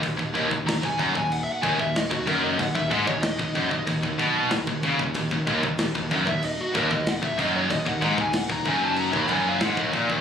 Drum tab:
CC |x-x-x-x-x-x-x-x-|x-x-x-x-x-x-x-x-|x-x-x-x-x-x-x-x-|x-x-x-x-x-x-x-x-|
SD |----o-------o---|----o-------o---|----o-------o---|----o-------o---|
BD |oooo-ooo--oo-oo-|oooo-oooooo--ooo|oooo-ooo--oo-oo-|oooo-oo--oo--ooo|